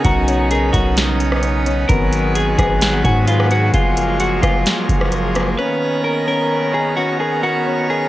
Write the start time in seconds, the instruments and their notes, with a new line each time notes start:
Already playing: pipe organ C#3 B3 C#4 D#4, harp A#3 C#4 A#4, synth texture C#4 D#5 A#5
0.05 808-style bass B1, clean electric guitar F#4, harp A#5, kick, closed hi-hat
0.28 harp C#4, closed hi-hat
0.51 clean electric guitar G#4, harp A#4, closed hi-hat
0.73 808-style bass B1, clean electric guitar F#4, harp A#5, kick, closed hi-hat
0.97 snare, closed hi-hat
1.20 closed hi-hat
1.32 cross-stick
1.43 closed hi-hat
1.66 harp C#4, closed hi-hat
1.89 808-style bass G#1, pipe organ D#3 F#3 G#3, synth texture B3 G#4 F#5, harp B3, clean electric guitar A#4, kick, closed hi-hat
2.12 closed hi-hat
2.35 clean electric guitar G#4, harp G#5, closed hi-hat
2.58 808-style bass G#1, harp B3, clean electric guitar G#4, kick, cross-stick, closed hi-hat
2.81 snare, closed hi-hat
3.04 808-style bass G#2, clean electric guitar F#4, harp G#5, kick, closed hi-hat
3.27 harp B3, clean electric guitar F4, closed hi-hat
3.40 cross-stick
3.50 clean electric guitar F#4, harp G#4, closed hi-hat
3.74 808-style bass F#1, pipe organ F3 G#3 A#3, synth texture A#3 F5, clean electric guitar F4, harp G#5, kick, closed hi-hat
3.97 harp A#3, closed hi-hat
4.19 clean electric guitar F#4, harp G#4, closed hi-hat
4.42 808-style bass F#1, clean electric guitar F4, harp G#5, kick, cross-stick, closed hi-hat
4.66 snare, closed hi-hat
4.89 808-style bass F#1, kick, closed hi-hat
5.01 cross-stick
5.12 closed hi-hat
5.35 harp A#3, cross-stick, closed hi-hat
5.58 pipe organ D#3 B3 C#4 A#5, synth texture B3 C#5 D#5 A#5, harp C#4, clean electric guitar B4
6.04 clean electric guitar A#4, harp A#5
6.27 harp C#4, clean electric guitar A#4
6.74 clean electric guitar G#4, harp A#5
6.97 harp C#4, clean electric guitar F#4
7.20 clean electric guitar G#4, harp A#4
7.43 clean electric guitar F#4, harp A#5
7.66 harp C#4
7.90 clean electric guitar G#4, harp A#4